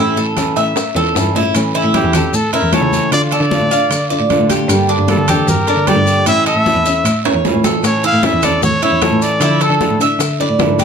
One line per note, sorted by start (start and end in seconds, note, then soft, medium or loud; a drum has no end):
0.00 0.16 A2 medium
0.00 0.35 E3 medium
0.00 0.36 A3 medium
0.00 0.37 C#4 medium
0.00 0.17 E4 medium
0.00 0.37 E4 medium
0.17 0.54 A2 medium
0.17 0.56 A4 medium
0.17 high bongo soft
0.17 high conga soft
0.17 maracas soft
0.36 0.75 E3 medium
0.36 0.75 A3 medium
0.36 0.76 C#4 medium
0.36 0.76 E4 medium
0.36 high bongo medium
0.36 high conga medium
0.36 high timbale medium
0.36 low timbale medium
0.36 short guiro medium
0.36 maracas medium
0.56 0.75 A2 medium
0.56 0.95 E5 medium
0.56 high conga soft
0.56 high timbale medium
0.56 short guiro medium
0.56 maracas soft
0.76 muted nylon-string guitar stroke medium
0.76 high bongo medium
0.76 high conga soft
0.76 high timbale medium
0.76 long guiro medium
0.76 maracas medium
0.95 1.15 E2 medium
0.95 1.15 A3 soft
0.95 1.15 C#4 soft
0.95 1.15 E4 soft
0.95 1.34 A4 medium
0.95 high bongo soft
0.95 high conga soft
0.95 low timbale medium
0.95 maracas soft
1.15 1.33 G2 medium
1.15 1.35 E3 medium
1.15 1.35 A3 medium
1.15 1.35 C#4 medium
1.15 1.34 E4 medium
1.15 high bongo medium
1.15 low bongo medium
1.15 high conga soft
1.15 low timbale medium
1.15 short guiro medium
1.15 maracas medium
1.35 1.53 A2 medium
1.35 1.55 A3 soft
1.35 1.55 C#4 soft
1.35 1.54 E4 soft
1.35 1.55 E4 medium
1.35 high bongo soft
1.35 high conga soft
1.35 low timbale medium
1.35 short guiro medium
1.35 maracas soft
1.55 1.83 A2 medium
1.55 1.93 E3 medium
1.55 1.94 A3 medium
1.55 1.94 C#4 medium
1.55 1.95 E4 medium
1.55 high conga soft
1.55 high timbale medium
1.55 long guiro medium
1.55 maracas medium
1.75 2.13 E4 medium
1.75 high conga soft
1.75 maracas soft
1.84 2.03 A2 medium
1.94 2.13 E3 medium
1.94 2.14 A3 medium
1.94 2.14 C#4 medium
1.94 2.13 E4 medium
1.94 2.37 G4 medium
1.94 high conga medium
1.94 high timbale medium
1.94 low timbale medium
1.94 short guiro medium
1.94 maracas soft
2.04 2.32 E2 medium
2.13 2.33 A3 soft
2.13 2.33 C#4 soft
2.13 2.33 E4 soft
2.13 2.53 A4 medium
2.13 high conga soft
2.13 low conga medium
2.13 high timbale loud
2.13 short guiro medium
2.13 maracas medium
2.33 2.62 A2 medium
2.33 2.53 A4 medium
2.33 muted nylon-string guitar stroke medium
2.33 high conga soft
2.33 long guiro medium
2.33 maracas medium
2.53 2.72 A3 soft
2.53 2.73 C#4 soft
2.53 2.72 E4 medium
2.53 2.73 E4 medium
2.53 2.75 A#4 medium
2.53 high conga soft
2.53 high timbale medium
2.53 maracas soft
2.63 2.81 E2 medium
2.73 3.12 E3 medium
2.73 3.12 A3 medium
2.73 3.12 C#4 medium
2.73 3.13 E4 medium
2.73 3.12 A4 medium
2.73 3.13 C#5 loud
2.73 high conga medium
2.73 high timbale medium
2.73 low timbale medium
2.73 short guiro medium
2.73 maracas soft
2.82 3.11 C#3 medium
2.92 high conga medium
2.92 short guiro medium
2.92 maracas medium
3.12 3.40 D3 medium
3.12 3.51 D3 medium
3.12 3.51 A3 medium
3.12 3.52 D4 medium
3.12 3.32 F4 medium
3.12 3.52 F4 medium
3.12 3.22 D5 loud
3.12 high conga soft
3.12 high timbale medium
3.12 long guiro medium
3.12 maracas medium
3.31 3.70 A4 medium
3.31 4.08 D5 loud
3.31 high conga soft
3.31 high timbale medium
3.31 maracas soft
3.41 3.60 D3 medium
3.51 3.71 D3 medium
3.51 3.71 A3 medium
3.51 3.71 D4 medium
3.51 3.70 F4 medium
3.51 high conga loud
3.51 low timbale medium
3.51 short guiro medium
3.51 maracas soft
3.61 3.89 A2 medium
3.71 3.90 A3 soft
3.71 3.91 D4 medium
3.71 3.90 F4 soft
3.71 4.10 F5 medium
3.71 high conga soft
3.71 short guiro medium
3.71 maracas medium
3.90 4.19 D3 medium
3.90 muted nylon-string guitar stroke medium
3.90 high conga soft
3.90 high timbale medium
3.90 long guiro medium
3.90 maracas medium
4.10 4.30 A3 soft
4.10 4.30 D4 soft
4.10 4.30 F4 medium
4.10 4.49 D5 medium
4.10 high conga soft
4.10 maracas soft
4.20 4.39 A2 medium
4.30 4.68 D3 medium
4.30 4.69 A3 medium
4.30 4.69 D4 medium
4.30 4.70 F4 medium
4.30 high conga medium
4.30 high timbale medium
4.30 low timbale medium
4.30 short guiro medium
4.30 maracas soft
4.39 4.68 A2 medium
4.50 4.88 G4 medium
4.50 high conga medium
4.50 high timbale medium
4.50 short guiro medium
4.50 maracas medium
4.69 4.97 G2 loud
4.69 5.07 D3 medium
4.69 5.08 G3 medium
4.69 5.08 A#3 medium
4.69 5.09 D4 medium
4.69 5.09 A4 medium
4.69 high conga soft
4.69 high timbale medium
4.69 long guiro medium
4.69 maracas medium
4.89 5.27 D4 medium
4.89 high conga soft
4.89 maracas soft
4.98 5.17 G2 medium
5.08 5.28 D3 medium
5.08 5.28 G3 medium
5.08 5.28 A#3 medium
5.08 5.28 D4 medium
5.08 5.46 A4 medium
5.08 5.27 A4 medium
5.08 high conga medium
5.08 high timbale medium
5.08 low timbale medium
5.08 short guiro medium
5.08 maracas soft
5.18 5.46 D3 medium
5.28 5.48 A#3 soft
5.28 5.48 D4 soft
5.28 5.67 G4 medium
5.28 5.47 A4 medium
5.28 high conga soft
5.28 low conga medium
5.28 high timbale loud
5.28 short guiro medium
5.28 maracas medium
5.47 5.76 G2 medium
5.47 5.90 A#4 medium
5.47 muted nylon-string guitar stroke medium
5.47 high conga soft
5.47 low conga medium
5.47 long guiro medium
5.47 maracas medium
5.67 5.87 A#3 soft
5.67 5.87 D4 medium
5.67 5.87 D4 soft
5.67 5.87 A4 medium
5.67 high conga soft
5.67 high timbale medium
5.67 maracas soft
5.77 5.95 D3 medium
5.87 6.26 D3 medium
5.87 6.26 G3 medium
5.87 6.26 A#3 medium
5.87 6.27 D4 medium
5.87 6.26 G4 medium
5.87 6.27 A4 medium
5.87 6.27 D5 loud
5.87 high conga medium
5.87 high timbale medium
5.87 low timbale medium
5.87 short guiro medium
5.87 maracas soft
5.96 6.25 G2 medium
6.07 short guiro medium
6.07 maracas medium
6.26 6.54 A2 medium
6.26 6.65 E3 medium
6.26 6.66 A3 medium
6.26 6.66 C#4 medium
6.26 6.46 E4 medium
6.26 6.66 E4 medium
6.26 6.46 E5 loud
6.26 high conga soft
6.26 high timbale medium
6.26 long guiro medium
6.26 maracas medium
6.46 6.85 A4 medium
6.46 7.22 E5 loud
6.46 high conga soft
6.46 high timbale medium
6.46 maracas soft
6.56 6.75 A2 medium
6.66 6.85 E3 medium
6.66 6.86 A3 medium
6.66 6.86 C#4 medium
6.66 6.85 E4 medium
6.66 high conga medium
6.66 low timbale medium
6.66 short guiro medium
6.66 maracas soft
6.75 7.04 E2 medium
6.86 7.05 A3 soft
6.86 7.05 C#4 soft
6.86 7.05 E4 medium
6.86 7.24 E5 medium
6.86 high conga soft
6.86 short guiro medium
6.86 maracas medium
7.05 7.33 A2 medium
7.05 muted nylon-string guitar stroke medium
7.05 high conga soft
7.05 high timbale medium
7.05 long guiro medium
7.05 maracas medium
7.25 7.45 A3 soft
7.25 7.45 C#4 soft
7.25 7.44 E4 medium
7.25 7.63 C#5 medium
7.25 high conga soft
7.25 high timbale loud
7.25 maracas soft
7.34 7.53 E2 medium
7.45 7.83 E3 medium
7.45 7.84 A3 medium
7.45 7.84 C#4 medium
7.45 7.85 E4 medium
7.45 high conga medium
7.45 low timbale loud
7.45 short guiro medium
7.45 maracas soft
7.54 7.82 A2 medium
7.64 8.03 A4 medium
7.64 high conga medium
7.64 low timbale loud
7.64 short guiro medium
7.64 maracas medium
7.83 8.12 A2 loud
7.83 8.22 E3 medium
7.83 8.23 A3 medium
7.83 8.23 C#4 medium
7.83 8.24 E4 medium
7.83 8.04 C#5 loud
7.83 high bongo medium
7.83 high conga soft
7.83 high timbale medium
7.83 long guiro medium
7.83 maracas medium
8.03 8.42 E4 medium
8.03 8.27 F5 loud
8.03 high conga soft
8.03 maracas soft
8.13 8.32 A2 medium
8.23 8.42 E3 medium
8.23 8.43 A3 medium
8.23 8.43 C#4 medium
8.23 8.42 E4 medium
8.23 8.46 E5 medium
8.23 high bongo medium
8.23 high conga medium
8.23 high timbale medium
8.23 low timbale medium
8.23 short guiro medium
8.23 maracas soft
8.33 8.61 E2 medium
8.43 8.62 A3 soft
8.43 8.63 C#4 soft
8.43 8.62 E4 medium
8.43 8.81 A4 medium
8.43 8.64 D5 medium
8.43 high conga soft
8.43 low conga medium
8.43 high timbale loud
8.43 short guiro medium
8.43 maracas medium
8.62 8.91 A2 medium
8.62 8.82 C#5 loud
8.62 muted nylon-string guitar stroke medium
8.62 high bongo medium
8.62 high conga soft
8.62 low conga medium
8.62 maracas medium
8.82 9.02 A3 soft
8.82 9.02 C#4 medium
8.82 9.01 E4 medium
8.82 9.02 E4 medium
8.82 9.24 C#5 medium
8.82 high conga soft
8.82 high timbale medium
8.82 maracas soft
8.92 9.11 E2 medium
9.02 9.41 E3 medium
9.02 9.41 A3 medium
9.02 9.42 C#4 medium
9.02 9.41 E4 medium
9.02 9.40 A4 medium
9.02 high bongo medium
9.02 low bongo medium
9.02 high conga medium
9.02 high timbale medium
9.02 low timbale medium
9.02 short guiro medium
9.02 maracas soft
9.12 9.40 A2 medium
9.22 9.64 D5 loud
9.22 short guiro medium
9.22 maracas medium
9.41 9.69 D3 medium
9.41 9.79 D3 medium
9.41 9.80 F3 medium
9.41 9.80 A3 medium
9.41 9.81 D4 medium
9.41 9.61 E4 medium
9.41 9.81 E4 medium
9.41 high bongo medium
9.41 high conga soft
9.41 high timbale medium
9.41 long guiro medium
9.41 maracas medium
9.61 10.00 A4 medium
9.61 10.01 A4 medium
9.61 high bongo soft
9.61 high conga soft
9.61 high timbale medium
9.61 maracas soft
9.70 9.89 D3 medium
9.81 10.00 D3 medium
9.81 10.00 F3 medium
9.81 10.00 A3 medium
9.81 10.00 D4 medium
9.81 9.99 E4 medium
9.81 high bongo medium
9.81 high conga medium
9.81 low timbale medium
9.81 short guiro medium
9.81 maracas soft
9.90 10.19 A2 medium
10.00 10.20 A3 soft
10.00 10.20 D4 soft
10.00 10.19 E4 medium
10.00 10.39 E5 medium
10.00 high bongo soft
10.00 high conga soft
10.00 short guiro medium
10.00 maracas medium
10.19 10.48 D3 medium
10.19 muted nylon-string guitar stroke medium
10.19 high bongo medium
10.19 high conga soft
10.19 high timbale medium
10.19 long guiro medium
10.19 maracas loud
10.39 10.60 A3 soft
10.39 10.60 D4 soft
10.39 10.59 E4 medium
10.39 10.78 D5 medium
10.39 high bongo soft
10.39 high conga soft
10.39 maracas soft
10.49 10.68 A2 medium
10.59 10.84 D3 medium
10.59 10.84 F3 medium
10.59 10.84 A3 medium
10.59 10.84 D4 medium
10.59 10.84 E4 medium
10.59 high bongo medium
10.59 low bongo medium
10.59 high conga medium
10.59 high timbale medium
10.59 low timbale medium
10.59 short guiro medium
10.59 maracas soft
10.69 10.84 G#2 medium
10.79 10.84 G4 medium
10.79 high conga medium
10.79 high timbale medium
10.79 short guiro medium
10.79 maracas medium